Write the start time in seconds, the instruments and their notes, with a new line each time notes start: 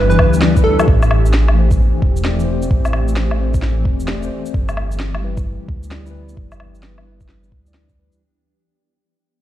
Already playing: detuned saw bass G1, ambient pad E3 B3 D4 G4, tine electric piano G3 E4 B4 D5
0.10 digital synth lead B4, shaker
0.19 detuned saw bass D2, kick, low woodblock
0.33 shaker
0.40 tine electric piano G3 E4 D5, snare
0.55 tine electric piano G3 E4 B4, kick, shaker
0.64 digital synth lead A4
0.80 low woodblock, shaker
0.88 detuned saw bass A1, kick
1.03 ambient pad A3, low woodblock, shaker
1.11 ambient pad C4, low woodblock
1.26 shaker
1.34 snare
1.48 low woodblock
1.54 tine electric piano A3 G4
1.59 tine electric piano C5
1.71 kick, shaker
2.02 detuned saw bass E1, kick
2.17 shaker
2.23 tine electric piano A3 G4, snare
2.27 tine electric piano D5
2.36 tine electric piano A3 G4, shaker
2.44 tine electric piano C5
2.62 shaker
2.71 detuned saw bass A1, kick
2.85 low woodblock, shaker
2.93 low woodblock
3.08 shaker
3.16 snare
3.31 low woodblock
3.37 detuned saw bass A1, tine electric piano A3 G4 C5
3.54 kick, shaker
3.62 snare
3.85 detuned saw bass E1, kick
4.00 shaker
4.05 tine electric piano A3 G4, snare
4.09 tine electric piano D5
4.20 tine electric piano A3 G4, shaker
4.25 tine electric piano C5
4.46 shaker
4.54 detuned saw bass G1, kick
4.69 low woodblock, shaker
4.77 ambient pad B3, low woodblock
4.92 shaker
5.00 snare
5.15 low woodblock
5.21 tine electric piano G3 E4 B4
5.37 kick, shaker
5.61 ambient pad D4
5.68 detuned saw bass D2, kick
5.83 shaker
5.89 tine electric piano G3 E4 D5, snare
6.03 tine electric piano G3 E4, shaker
6.11 tine electric piano B4
6.29 shaker
6.37 detuned saw bass G1, kick
6.52 low woodblock, shaker
6.60 low woodblock
6.75 shaker
6.83 snare
6.98 low woodblock
7.04 detuned saw bass G1, tine electric piano G3 E4 B4
7.21 kick, shaker
7.29 snare
7.43 shaker
7.52 detuned saw bass D2, kick
7.64 tine electric piano G3 E4, shaker
7.68 tine electric piano D5
7.74 snare
7.89 kick, shaker
7.95 tine electric piano G3 E4 B4
8.12 shaker